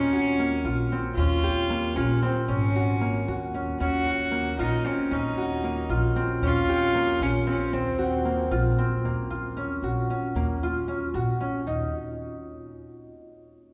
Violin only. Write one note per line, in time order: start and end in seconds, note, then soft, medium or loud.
0.00 0.90 C#4 loud
1.16 1.97 F4 loud
1.96 2.22 C#4 medium
2.24 2.35 C4 medium
2.51 3.51 C#4 medium
3.80 4.55 F#4 loud
4.60 4.88 D#4 medium
4.87 5.15 C#4 medium
5.14 6.17 D#4 medium
6.45 7.24 F4 loud
7.23 7.48 C#4 medium
7.49 7.76 C#4 medium
7.74 8.79 C4 medium